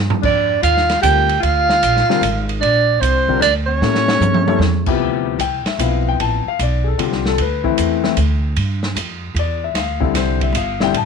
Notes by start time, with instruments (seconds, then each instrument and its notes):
Already playing: upright bass G2, grand piano F3 A#3 D#4 G#4 C5
0.10 floor tom
0.22 upright bass F2, alto saxophone D4, soprano saxophone D5, kick, crash
0.62 upright bass D#2, alto saxophone F4, soprano saxophone F5, hi-hat pedal, ride
0.77 snare
0.89 snare, ride
1.01 upright bass D2, grand piano D3 G3 C4 F4 A#4, alto saxophone G4, soprano saxophone G5, hi-hat pedal, ride
1.29 ride
1.40 upright bass D2, alto saxophone F4, soprano saxophone F5, ride
1.69 snare
1.83 upright bass A#1, hi-hat pedal, ride
1.97 snare
2.09 grand piano D3 G3 C4 F4 A#4, snare
2.21 upright bass G#1, hi-hat pedal, ride
2.49 ride
2.60 upright bass A#1, alto saxophone D4, soprano saxophone D5, ride
3.00 upright bass C2, alto saxophone C4, soprano saxophone C5, hi-hat pedal, ride
3.28 grand piano D3 G3 C4 F4 A#4, kick
3.39 upright bass D2, alto saxophone D4, soprano saxophone D5, hi-hat pedal, ride
3.67 alto saxophone C#4, soprano saxophone C#5
3.81 upright bass A2, grand piano G3 A#3 C#4 E4 A4, snare
3.95 snare
4.08 snare
4.20 upright bass G2, hi-hat pedal, mid tom
4.34 mid tom
4.47 grand piano G3 A#3 C#4 E4 A4, mid tom
4.59 upright bass E2, snare
4.86 grand piano C3 F3 B3 E4 G4, kick, crash
4.99 upright bass D2
5.39 upright bass C2, grand piano G5, hi-hat pedal, ride
5.65 grand piano E5, muted upright bass stroke, snare, ride
5.79 upright bass B1, grand piano F3 B3 C4 E4 F5, hi-hat pedal, ride
6.09 grand piano G5
6.20 upright bass A1, grand piano A5, ride
6.46 grand piano F5, muted upright bass stroke
6.59 upright bass B1, grand piano D5, hi-hat pedal, ride
6.84 grand piano G#4 A4
6.98 upright bass C2, grand piano D3 G3 C4 F4, ride
7.03 grand piano G4
7.12 snare
7.26 grand piano A4, snare
7.38 upright bass D2, grand piano B4, ride
7.64 grand piano E3 A3 C4 E4, kick
7.78 upright bass E2, hi-hat pedal, ride
8.04 grand piano E3 A3 C4 E4, snare
8.17 upright bass D2, hi-hat pedal, ride
8.56 upright bass G2, ride
8.83 snare
8.95 upright bass F2, hi-hat pedal, ride
9.34 upright bass E2, ride
9.39 grand piano D5
9.64 grand piano E5
9.74 upright bass D2, grand piano F5, snare, ride
10.00 grand piano D3 G3 C4 E4 A4, kick
10.14 upright bass C2, grand piano C5, snare, hi-hat pedal, ride
10.41 grand piano E5, kick, ride
10.53 upright bass G1, hi-hat pedal, ride
10.57 grand piano F5
10.80 grand piano D3 G3 C4 E4 G5, snare
10.93 upright bass A1, ride
10.97 grand piano A5